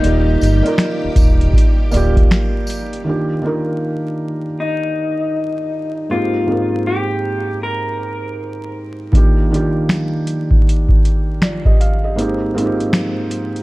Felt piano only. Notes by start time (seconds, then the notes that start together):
Already playing: D4 F4 A#4
0.00 A#3 D5
0.04 F4 G4
0.63 A#3 F4 D5
0.67 A#4
1.91 A#3 F4 D5
1.96 G4
3.04 D#3 A#3 D4 F4
3.09 G4
3.42 D#3 A#3 D4 F4
3.47 A#4
6.09 G#2 A#3 C4 D#4
6.15 G4
6.46 G#2 A#3 C4 D#4
6.52 A#4
9.12 D#3 A#3 D4
9.16 F4 G4
9.50 D#3 A#3 D4
9.54 F4 G4
11.43 F4 D5
11.65 G4 D#5
11.80 F5
12.04 G4 D#5
12.16 G#2 A#3 C4 D#4
12.21 G4
12.54 G#2 A#3 C4 D#4
12.59 F4
12.65 G4